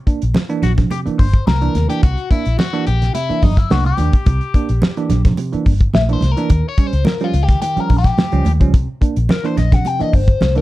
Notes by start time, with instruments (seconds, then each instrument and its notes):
0.07 tine electric piano A#3 D4, kick, closed hi-hat
0.22 fingered electric bass A#1, closed hi-hat
0.34 snare, high conga
0.49 tine electric piano E3 A#3 D4, closed hi-hat
0.63 fingered electric bass A#1, overdriven electric guitar F#4, snare, closed hi-hat, low conga
0.78 tine electric piano C3, kick, snare, closed hi-hat, low conga
0.91 tine electric piano C3, overdriven electric guitar G4, closed hi-hat, muted conga
1.06 tine electric piano E3 A#3 D4, muted fingered electric bass stroke, closed hi-hat
1.19 fingered electric bass G1, tine electric piano A#3 D4, overdriven electric guitar C5, kick, open hi-hat
1.34 kick, closed hi-hat
1.47 fingered electric bass C2, overdriven electric guitar A#4, snare, high conga
1.61 tine electric piano E3 A#3 D4, closed hi-hat
1.75 fingered electric bass D#2, tine electric piano C3, snare, closed hi-hat, high conga
1.89 tine electric piano E3 A#3 D4, overdriven electric guitar G4, closed hi-hat
2.03 fingered electric bass C2, tine electric piano C3, overdriven electric guitar F#4, kick, closed hi-hat, muted conga
2.17 closed hi-hat
2.31 tine electric piano A#3 D4, overdriven electric guitar E4, kick, closed hi-hat, muted conga
2.45 fingered electric bass A#1, closed hi-hat
2.59 overdriven electric guitar F#4, snare, high conga
2.73 tine electric piano E3 A#3 D4, closed hi-hat
2.86 fingered electric bass A#1, overdriven electric guitar G4, closed hi-hat
3.02 tine electric piano C3, snare, closed hi-hat
3.15 tine electric piano C3, overdriven electric guitar E4, closed hi-hat, muted conga
3.29 tine electric piano E3 A#3 D4, muted fingered electric bass stroke, closed hi-hat
3.42 fingered electric bass G1, tine electric piano A#3 D4, overdriven electric guitar D#4, kick, open hi-hat, low conga
3.57 overdriven electric guitar E4, kick, snare, closed hi-hat
3.70 fingered electric bass C2, tine electric piano A#3 D4, overdriven electric guitar F#4, snare, high conga
3.85 tine electric piano C3, overdriven electric guitar G4, closed hi-hat
3.98 fingered electric bass D#2, tine electric piano A#3 D4, closed hi-hat, high conga
4.13 kick, closed hi-hat
4.26 fingered electric bass C2, tine electric piano C3, kick, closed hi-hat, muted conga
4.41 closed hi-hat
4.54 tine electric piano A#3 D4, kick, closed hi-hat
4.69 fingered electric bass A#1, closed hi-hat
4.82 snare, high conga
4.97 tine electric piano E3 A#3 D4, closed hi-hat
5.10 fingered electric bass A#1, snare, closed hi-hat, low conga
5.25 tine electric piano C3, kick, snare, closed hi-hat, low conga
5.37 tine electric piano C3, closed hi-hat, muted conga
5.53 tine electric piano E3 A#3 D4, muted fingered electric bass stroke, closed hi-hat
5.66 fingered electric bass G1, tine electric piano A#3 D4, kick, open hi-hat
5.81 kick, closed hi-hat
5.94 fingered electric bass A#1, overdriven electric guitar E5, snare, high conga
6.09 tine electric piano E3 A#3 D4, closed hi-hat
6.13 overdriven electric guitar C5
6.21 fingered electric bass C2, tine electric piano C3, snare, closed hi-hat, high conga
6.31 overdriven electric guitar A#4
6.37 tine electric piano E3 A#3 D4, closed hi-hat
6.50 fingered electric bass D#2, tine electric piano D#3, kick, closed hi-hat, muted conga
6.69 overdriven electric guitar C#5
6.78 tine electric piano G3 C#4, kick, closed hi-hat
6.87 overdriven electric guitar C5
6.93 fingered electric bass C#2, closed hi-hat
7.05 overdriven electric guitar A#4, snare, high conga
7.20 tine electric piano F3 G3 C#4, overdriven electric guitar F4, closed hi-hat
7.34 fingered electric bass C#2, closed hi-hat
7.43 overdriven electric guitar G4
7.49 tine electric piano D#3, kick, snare, closed hi-hat
7.62 tine electric piano D#3, overdriven electric guitar G4, closed hi-hat, muted conga
7.76 tine electric piano F3 G3 C#4, overdriven electric guitar A#4, muted fingered electric bass stroke, closed hi-hat
7.90 fingered electric bass A#1, tine electric piano G3 C#4, kick, open hi-hat, low conga
7.98 overdriven electric guitar G4
8.04 kick, snare, closed hi-hat
8.18 snare, high conga
8.32 fingered electric bass C#2, tine electric piano F3 G3 C#4, closed hi-hat
8.45 fingered electric bass D#2, tine electric piano D#3, closed hi-hat, high conga
8.60 fingered electric bass C#2, tine electric piano F3 G3 C#4, kick, closed hi-hat
8.73 fingered electric bass C2, tine electric piano C3, kick, closed hi-hat, muted conga
9.01 tine electric piano A#3 D4, kick, closed hi-hat
9.16 fingered electric bass A#1, closed hi-hat
9.29 overdriven electric guitar A#4, snare, high conga
9.44 tine electric piano E3 A#3 D4, overdriven electric guitar C5, closed hi-hat
9.57 fingered electric bass A#1, overdriven electric guitar D#5, snare, closed hi-hat, low conga
9.72 tine electric piano C3, overdriven electric guitar F#5, kick, snare, closed hi-hat, low conga
9.85 tine electric piano C3, overdriven electric guitar G5, closed hi-hat, muted conga
10.00 tine electric piano E3 A#3 D4, overdriven electric guitar D#5, muted fingered electric bass stroke, closed hi-hat
10.13 fingered electric bass G1, tine electric piano A#3 D4, overdriven electric guitar C5, kick, open hi-hat
10.28 kick, closed hi-hat
10.41 fingered electric bass C2, snare, high conga
10.55 tine electric piano E3 A#3 D4, overdriven electric guitar A#4, closed hi-hat